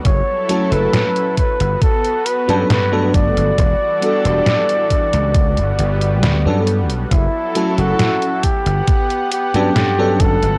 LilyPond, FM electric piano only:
\new Staff \with { instrumentName = "FM electric piano" } { \time 4/4 \key g \lydian \tempo 4 = 68 r8 <fis a cis' e' a'>4 r4 r16 <fis b cis' d' a'>16 r16 <fis a b d' a'>8. | r8 <g b d' fis' a'>4. r4 r16 <fis b cis' d' a'>16 r8 | r8 <fis a cis' e' a'>4 r4 r16 <fis b cis' d' a'>16 r16 <fis b cis' d' a'>8. | }